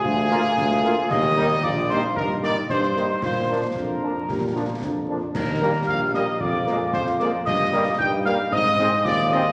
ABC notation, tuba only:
X:1
M:2/4
L:1/8
Q:1/4=113
K:Eb
V:1 name="Tuba" clef=bass
D,,2 D,,2 | E,,2 B,,,2 | G,,2 G,,2 | B,,2 F,,2 |
B,,2 F,,2 | E,,2 B,,,2 | F,,2 F,,2 | G,,2 G,,2 |
A,,2 E,,2 |]